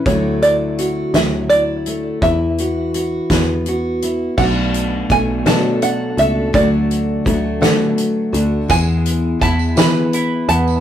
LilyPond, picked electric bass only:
\new Staff \with { instrumentName = "Picked electric bass" } { \clef bass \time 6/8 \key d \lydian \tempo 4. = 56 d,4. d,4. | e,4. e,4. | b,,4 b,,8 b,4 cis,8 | d,4 d,8 d4 d,8 |
e,4 e,8 e4 e,8 | }